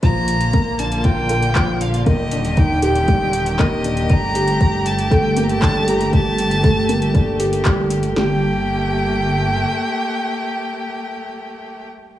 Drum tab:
HH |x-xxx-xxx-xxx-xx|x-xxx-xxx-xxx-xx|x-xxx-xxx-xxx-xx|x-xxx-xxx-xxx-xx|
CP |------------x---|------------x---|------------x---|------------x---|
SD |----------------|----------------|----------------|----------------|
BD |o---o---o---o---|o---o---o---o---|o---o---o---o---|o---o---o---o---|

HH |----------------|----------------|
CP |----------------|----------------|
SD |o---------------|----------------|
BD |----------------|----------------|